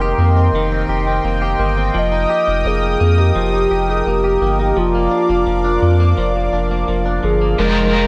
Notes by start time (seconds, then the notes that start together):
Already playing: F1 D#3 A#3 C4 A#4 D#5 G5 C6
0.01 G4
0.18 F2 A#3
0.37 C4
0.53 F1 D#3
0.72 C4
0.89 F1 G4
1.07 C4
1.24 F1 A#3
1.42 G4
1.59 G1 A#3
1.77 C4
1.94 F1 F3 A#4 D#5 D#6
2.12 D#4
2.30 G4
2.47 F1 D#4
2.65 F1 A#3 G#4
3.00 F2 A#3
3.18 D#4 G4
3.36 F1 F3 G4
3.53 D#4
3.71 F1 G4
3.89 D#4 G#4
4.06 F1 A#3 G4
4.24 G4
4.41 G1 A#3
4.59 D#4 G4
4.77 F1 F3 F4 D5 F5 D6
4.95 A#3
5.11 D4
5.29 F1 A#3
5.47 F1 F3
5.64 D4
5.82 F2 F3
6.00 A#3
6.18 F1 F3
6.35 A#3
6.52 F1 D4
6.71 A#3
6.88 F1 F3
7.06 D4
7.23 G1 F3 G#4
7.41 A#3
7.59 F1 F3 G#3 D#4 F4 A#4 G5 A#5
7.93 A#3 F4 A#4
7.99 D#4